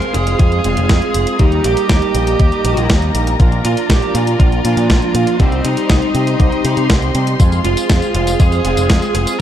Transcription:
Already playing: analog polysynth G#3 C4 F4 G#4, string section G#4 C5 F5 C6, lead electric guitar A#4
0.02 closed hi-hat
0.14 picked electric bass F1, lead electric guitar G#4, closed hi-hat
0.27 closed hi-hat
0.39 picked electric bass F2, lead electric guitar G#4, kick, closed hi-hat
0.52 closed hi-hat
0.64 picked electric bass F1, analog polysynth G#3 C4 F4 G#4, closed hi-hat
0.77 picked electric bass F1, closed hi-hat
0.89 picked electric bass F2, kick, snare, closed hi-hat
1.02 closed hi-hat
1.14 picked electric bass F1, closed hi-hat
1.27 closed hi-hat
1.39 picked electric bass D#2, analog polysynth G3 A#3 D#4 G4, lead electric guitar D#4, string section G4 A#4 D#5 A#5, kick, closed hi-hat
1.52 closed hi-hat
1.64 picked electric bass A#1, lead electric guitar G4, closed hi-hat
1.77 closed hi-hat
1.89 picked electric bass D#2, lead electric guitar G4, kick, snare, closed hi-hat
2.02 closed hi-hat
2.15 picked electric bass A#1, closed hi-hat
2.27 closed hi-hat
2.40 picked electric bass D#2, kick, closed hi-hat
2.52 closed hi-hat
2.65 picked electric bass A#1, closed hi-hat
2.77 picked electric bass A#1, closed hi-hat
2.90 picked electric bass D#2, kick, snare, closed hi-hat
3.02 closed hi-hat
3.15 picked electric bass A#1, analog polysynth G3 A#3 D#4 G4, closed hi-hat
3.27 closed hi-hat
3.40 picked electric bass A#1, analog polysynth F3 A#3 D4 F4, string section F4 D5, kick, closed hi-hat
3.52 closed hi-hat
3.65 picked electric bass A#2, lead electric guitar F4, closed hi-hat
3.77 closed hi-hat
3.89 picked electric bass A#1, lead electric guitar G4, kick, snare, closed hi-hat
4.02 closed hi-hat
4.15 picked electric bass A#2, lead electric guitar F4, closed hi-hat
4.27 closed hi-hat
4.40 picked electric bass A#1, lead electric guitar F4, kick, closed hi-hat
4.52 closed hi-hat
4.65 picked electric bass A#2, analog polysynth F3 A#3 D4 F4, closed hi-hat
4.77 picked electric bass A#2, closed hi-hat
4.90 picked electric bass A#1, kick, snare, closed hi-hat
5.02 closed hi-hat
5.15 picked electric bass A#2, closed hi-hat
5.27 closed hi-hat
5.39 picked electric bass C2, analog polysynth G3 C4 D#4 G4, lead electric guitar C4, string section G4 C5 D#5 C6, kick, closed hi-hat
5.52 closed hi-hat
5.65 picked electric bass C3, lead electric guitar D#4, closed hi-hat
5.77 closed hi-hat
5.90 picked electric bass C2, lead electric guitar D#4, kick, snare, closed hi-hat
6.02 closed hi-hat
6.15 picked electric bass C3, closed hi-hat
6.27 closed hi-hat
6.40 picked electric bass C2, kick, closed hi-hat
6.52 closed hi-hat
6.65 picked electric bass C3, closed hi-hat
6.77 picked electric bass C3, closed hi-hat
6.90 picked electric bass C2, kick, snare, closed hi-hat
7.02 closed hi-hat
7.15 picked electric bass C3, analog polysynth G3 C4 D#4 G4, closed hi-hat
7.27 closed hi-hat
7.40 picked electric bass F2, analog polysynth G#3 C4 F4 G#4, string section G#4 C5 F5, kick, closed hi-hat, tambourine
7.52 closed hi-hat, tambourine
7.65 picked electric bass F1, lead electric guitar F4, closed hi-hat
7.77 closed hi-hat, tambourine
7.90 picked electric bass F2, kick, snare, closed hi-hat, tambourine
8.02 closed hi-hat, tambourine
8.15 picked electric bass F1, lead electric guitar F4, closed hi-hat
8.27 closed hi-hat, tambourine
8.40 picked electric bass F2, lead electric guitar G#4, kick, closed hi-hat, tambourine
8.52 closed hi-hat, tambourine
8.64 picked electric bass F1, analog polysynth G#3 C4 F4 G#4, closed hi-hat
8.77 picked electric bass F1, closed hi-hat, tambourine
8.90 picked electric bass F2, kick, snare, closed hi-hat, tambourine
9.02 closed hi-hat, tambourine
9.15 picked electric bass F1, lead electric guitar G#4, closed hi-hat
9.27 closed hi-hat, tambourine

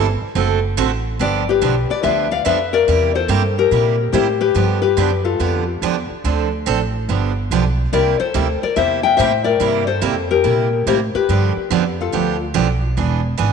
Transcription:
Already playing: upright bass G1
0.21 muted upright bass stroke
0.35 upright bass F#1, steel-string acoustic guitar D3 A3 C4 F#4 A4
0.77 upright bass A1, steel-string acoustic guitar D3 A3 C4 F#4 A4
1.19 upright bass G1, steel-string acoustic guitar D3 F3 B3 D4 G4, nylon-string guitar B4 D5
1.49 nylon-string guitar G4 B4
1.61 upright bass B1, steel-string acoustic guitar D3 F3 B3 D4 G4
1.90 nylon-string guitar B4 D5
2.03 upright bass D2, steel-string acoustic guitar D3 F3 B3 D4 G4, nylon-string guitar B4 E5
2.31 nylon-string guitar D5 F5
2.45 upright bass F2, steel-string acoustic guitar D3 F3 B3 D4 G4, nylon-string guitar B4 E5
2.73 nylon-string guitar A#4 D5
2.88 upright bass E2, steel-string acoustic guitar C3 G3 A#3 E4 G4
3.15 nylon-string guitar A4 C5
3.28 upright bass G2, steel-string acoustic guitar C3 G3 A#3 E4 G4
3.58 nylon-string guitar G4 A#4
3.71 upright bass A#2, steel-string acoustic guitar C3 G3 A#3 E4 G4
4.12 upright bass A2, steel-string acoustic guitar C3 G3 A#3 E4 G4, nylon-string guitar G4 C5
4.41 nylon-string guitar G4 B4
4.55 upright bass G2, steel-string acoustic guitar D3 F3 B3 D4 G4
4.82 nylon-string guitar G4 B4
4.97 upright bass F#2, steel-string acoustic guitar D3 F3 B3 D4 G4
5.25 nylon-string guitar F4 A4
5.40 upright bass F2, steel-string acoustic guitar D3 F3 B3 D4 G4
5.82 upright bass E2, steel-string acoustic guitar D3 F3 B3 D4 G4
6.10 muted upright bass stroke
6.24 upright bass D2, steel-string acoustic guitar D3 F3 C4 D4 A4
6.66 upright bass A1, steel-string acoustic guitar D3 F3 C4 D4 A4
7.09 upright bass G1, steel-string acoustic guitar D3 F3 B3 D4 G4
7.51 upright bass B1, steel-string acoustic guitar D3 F3 B3 D4 G4
7.92 upright bass C2, steel-string acoustic guitar C3 G3 A#3 E4 G4, nylon-string guitar A#4 D5
8.20 nylon-string guitar A4 C5, muted upright bass stroke
8.34 upright bass D2, steel-string acoustic guitar C3 G3 A#3 E4 G4
8.63 nylon-string guitar A#4 D5, muted upright bass stroke
8.76 upright bass E2, steel-string acoustic guitar C3 G3 A#3 E4 G4, nylon-string guitar C5 E5
9.03 nylon-string guitar E5 G5
9.17 upright bass A2, steel-string acoustic guitar C3 G3 A#3 E4 G4, nylon-string guitar C5 E5
9.44 nylon-string guitar A#4 D5
9.60 upright bass G2, steel-string acoustic guitar C3 G3 A#3 E4 G4
9.87 nylon-string guitar A4 C5
10.01 upright bass F2, steel-string acoustic guitar C3 G3 A#3 E4 G4
10.31 nylon-string guitar G4 A#4
10.44 upright bass A#2, steel-string acoustic guitar C3 G3 A#3 E4 G4
10.86 upright bass A2, steel-string acoustic guitar C3 G3 A#3 E4 G4, nylon-string guitar G4 C5
11.15 nylon-string guitar G4 B4, muted upright bass stroke
11.29 upright bass G2, steel-string acoustic guitar D3 F3 B3 D4 G4
11.57 muted upright bass stroke
11.70 upright bass F2, steel-string acoustic guitar D3 F3 B3 D4 G4
12.01 nylon-string guitar F4 A4
12.12 upright bass D2, steel-string acoustic guitar D3 F3 B3 D4 G4
12.54 upright bass B1, steel-string acoustic guitar D3 F3 B3 D4 G4
12.97 upright bass E1, steel-string acoustic guitar E3 B3 D4 G#4
13.38 upright bass G#1, steel-string acoustic guitar E3 B3 D4 G#4

